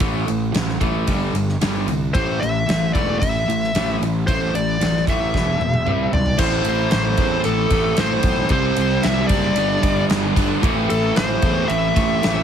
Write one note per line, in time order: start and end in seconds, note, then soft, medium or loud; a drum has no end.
0.00 0.25 A1 medium
0.00 0.26 A2 medium
0.00 0.26 E3 medium
0.00 0.26 A3 medium
0.00 kick loud
0.00 ride medium
0.27 0.52 A1 medium
0.27 0.51 A2 medium
0.27 0.52 E3 medium
0.27 ride medium
0.54 0.79 A1 medium
0.54 0.78 A2 medium
0.54 0.79 E3 medium
0.54 snare loud
0.54 ride medium
0.69 snare soft
0.81 1.10 A1 medium
0.81 1.06 A2 medium
0.81 1.06 E3 medium
0.81 1.07 A3 medium
0.81 kick medium
0.81 ride medium
1.07 1.32 G1 medium
1.07 1.33 G2 medium
1.07 1.33 D3 medium
1.07 1.33 G3 medium
1.07 kick medium
1.07 ride medium
1.34 1.58 G1 medium
1.34 1.59 G2 medium
1.34 1.59 D3 medium
1.34 ride medium
1.49 snare soft
1.61 1.85 G1 medium
1.61 1.86 G2 medium
1.61 1.86 D3 medium
1.61 1.87 G3 medium
1.61 snare loud
1.61 ride medium
1.87 2.11 C2 medium
1.87 2.12 G2 medium
1.87 2.12 D3 medium
1.87 ride medium
2.13 2.39 A1 medium
2.13 2.39 A2 medium
2.13 2.39 E3 loud
2.13 2.39 A3 medium
2.13 2.42 C5 loud
2.13 kick loud
2.13 ride medium
2.40 2.66 A1 medium
2.40 2.65 A2 medium
2.40 2.65 E3 medium
2.40 2.93 E5 loud
2.40 ride medium
2.67 2.91 A1 medium
2.67 2.91 A2 medium
2.67 2.92 E3 medium
2.67 snare loud
2.67 ride medium
2.93 3.19 E1 medium
2.93 3.19 A2 medium
2.93 3.19 E3 medium
2.93 3.20 A3 medium
2.93 3.19 D5 medium
2.93 kick medium
2.93 ride medium
3.19 3.45 A1 loud
3.19 3.45 A2 medium
3.19 3.45 E3 medium
3.19 3.96 E5 medium
3.19 kick medium
3.19 ride medium
3.48 3.71 A1 medium
3.48 3.72 A2 medium
3.48 3.72 E3 medium
3.48 ride medium
3.64 snare soft
3.75 3.98 A1 medium
3.75 4.00 A2 medium
3.75 4.00 E3 medium
3.75 4.00 A3 medium
3.75 snare loud
3.75 ride medium
4.01 4.25 A1 medium
4.01 4.25 A2 medium
4.01 4.25 E3 medium
4.01 ride medium
4.27 4.52 A1 medium
4.27 4.53 A2 medium
4.27 4.54 E3 medium
4.27 4.53 A3 loud
4.27 4.55 C5 medium
4.27 kick loud
4.27 ride medium
4.53 4.77 A1 medium
4.53 4.78 A2 medium
4.53 4.79 E3 medium
4.53 5.04 D5 medium
4.53 ride medium
4.81 5.04 A1 medium
4.81 5.06 A2 medium
4.81 5.06 E3 medium
4.81 snare medium
4.81 ride medium
4.96 snare soft
5.07 5.31 A1 medium
5.07 5.33 A2 medium
5.07 5.32 E3 medium
5.07 5.34 A3 medium
5.07 6.10 E5 medium
5.07 kick medium
5.07 ride medium
5.11 5.34 E3 medium
5.34 5.58 E1 medium
5.34 5.59 E2 medium
5.34 5.60 B2 medium
5.34 5.60 E3 medium
5.34 kick medium
5.34 snare medium
5.59 5.83 E1 medium
5.59 5.85 E2 medium
5.59 5.85 B2 medium
5.59 high tom medium
5.74 high tom medium
5.86 6.10 C2 medium
5.86 6.12 C3 medium
5.86 6.12 G3 medium
5.86 6.13 C4 loud
5.86 mid tom medium
6.12 6.36 B1 medium
6.12 6.37 C3 medium
6.12 6.37 G3 medium
6.12 6.38 D5 medium
6.12 floor tom medium
6.26 floor tom medium
6.38 6.59 A1 medium
6.38 7.17 A2 medium
6.38 7.70 A2 medium
6.38 7.17 E3 medium
6.38 7.71 E3 loud
6.38 7.16 A3 medium
6.38 7.16 C4 medium
6.38 7.16 E4 medium
6.38 6.90 C5 loud
6.38 kick loud
6.38 crash loud
6.42 7.69 A3 loud
6.65 6.86 A1 medium
6.65 ride medium
6.91 7.13 A1 medium
6.91 7.41 C5 medium
6.91 snare loud
6.91 ride medium
7.17 7.38 E2 medium
7.17 8.50 A2 medium
7.17 8.49 E3 medium
7.17 8.49 A3 medium
7.17 8.49 C4 medium
7.17 8.49 E4 medium
7.17 kick medium
7.17 ride medium
7.44 7.65 A1 medium
7.44 8.00 A4 loud
7.44 ride medium
7.70 7.91 A1 loud
7.70 7.96 A2 medium
7.70 7.97 E3 medium
7.70 7.96 A3 medium
7.70 kick medium
7.70 ride medium
7.97 8.18 A1 medium
7.97 8.49 A2 medium
7.97 8.50 E3 medium
7.97 8.50 A3 medium
7.97 8.49 C5 loud
7.97 snare loud
7.97 ride loud
8.23 8.44 B1 medium
8.23 kick medium
8.23 ride medium
8.49 8.70 C2 loud
8.49 9.28 C3 medium
8.49 9.55 C3 medium
8.49 9.29 G3 loud
8.49 9.56 G3 medium
8.49 9.29 C4 medium
8.49 9.56 C4 loud
8.49 9.28 E4 loud
8.49 9.06 C5 loud
8.49 kick loud
8.49 ride loud
8.76 8.97 C2 medium
8.76 ride medium
9.03 9.24 C2 medium
9.03 9.27 E5 loud
9.03 snare medium
9.03 ride loud
9.27 9.49 F#1 medium
9.27 9.56 G3 medium
9.27 9.55 C4 medium
9.27 9.55 E4 medium
9.27 10.05 D5 medium
9.27 kick medium
9.27 ride medium
9.31 9.56 C3 medium
9.55 9.77 G1 medium
9.55 10.61 G2 medium
9.55 10.34 G2 loud
9.55 10.61 D3 medium
9.55 10.35 D3 medium
9.55 10.35 G3 loud
9.55 10.62 G3 loud
9.55 10.35 B3 medium
9.55 10.35 D4 loud
9.55 ride loud
9.83 10.03 G1 medium
9.83 kick medium
9.83 ride medium
10.10 10.30 G1 medium
10.10 snare loud
10.10 ride loud
10.36 10.56 G1 loud
10.36 10.61 G2 medium
10.36 10.62 D3 medium
10.36 10.62 G3 medium
10.36 10.61 B3 medium
10.36 10.61 D4 medium
10.36 kick loud
10.36 ride medium
10.62 10.83 A1 medium
10.62 11.40 A2 medium
10.62 11.93 A2 medium
10.62 11.94 E3 loud
10.62 11.41 E3 medium
10.62 11.41 A3 medium
10.62 11.94 A3 loud
10.62 11.41 C4 loud
10.62 11.41 E4 loud
10.62 kick loud
10.62 ride loud
10.90 11.10 A1 medium
10.90 11.16 A4 medium
10.90 ride medium
11.16 11.37 A1 medium
11.16 11.71 C5 loud
11.16 snare loud
11.16 ride medium
11.42 11.62 E2 medium
11.42 12.43 A2 medium
11.42 12.43 E3 medium
11.42 12.43 A3 medium
11.42 12.43 C4 medium
11.42 12.43 E4 medium
11.42 kick medium
11.42 ride medium
11.68 11.89 A1 loud
11.68 12.43 E5 loud
11.68 ride loud
11.96 12.16 A1 medium
11.96 12.22 A2 medium
11.96 12.22 E3 medium
11.96 12.21 A3 medium
11.96 kick medium
11.96 ride medium
12.23 12.43 A1 medium
12.23 12.43 A2 medium
12.23 12.43 E3 medium
12.23 12.43 A3 medium
12.23 snare loud
12.23 ride loud